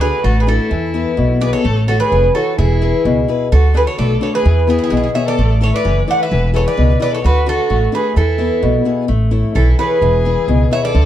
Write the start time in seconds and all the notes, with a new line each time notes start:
Already playing: D2 D3
0.00 D4 F#4 G#4 A4 B4
0.23 A1 A3 F#4 A4
0.40 G#4 B4
0.47 D4 E4 F#4 A4
0.71 E2 E3
0.94 B3 E4 B4
1.17 B1 B2
1.41 B3 E4 G#4 B4 D5
1.53 A4 C#5
1.65 A1 A3
1.88 A3 E4 F#4 A4 C#5
2.00 G#4 B4
2.12 F1 E3
2.35 E4 F#4 A4 C#5
2.59 E1 E3 E4 G#4
2.82 E4 G#4 B4
3.05 C#2 B2
3.28 E4 G#4 B4
3.52 D2 D3 F#4 A4
3.74 D4 F#4 G#4 A4 B4
3.86 A4 C#5
3.97 B1 A3 A4 D5
4.21 D4 F#4 A4 C#5
4.33 G#4 B4
4.45 E2 E3
4.67 B3 E4 G#4
4.79 G#4
4.84 G#4
4.90 B1 B2 G#4
4.97 G#4
5.04 G#4
5.15 B3 E4 G#4 C#5 E5
5.26 A4 D5
5.38 A1 A3
5.61 E4 A4 C#5 E5
5.73 B4 D5
5.85 F#1 E3
6.08 E4 A4 C#5 D5 F#5
6.20 B4 E5
6.31 E1 E3
6.54 E4 G#4 A4 B4 C#5
6.66 B4 D5
6.77 C#2 B2
7.00 E4 G#4 B4 D5
7.14 A4 C#5
7.24 D2 D3 F#4 B4
7.46 D4 F#4 A4
7.70 A1 A3
7.92 D4 F#4 G#4 A4 B4
8.16 E2 E3 E4 A4
8.38 B3 E4 B4
8.63 B1 B2
8.85 B3 E4 G#4
9.08 A1 A3
9.31 E4 A4 C#5
9.55 B1 E3 E4 A4
9.79 E4 G#4 A4 B4 C#5
10.01 E1 E3
10.25 E4 G#4 B4
10.48 C#2 B2
10.71 E4 G#4 B4 C#5 E5
10.85 A4 D5
10.95 D2 D3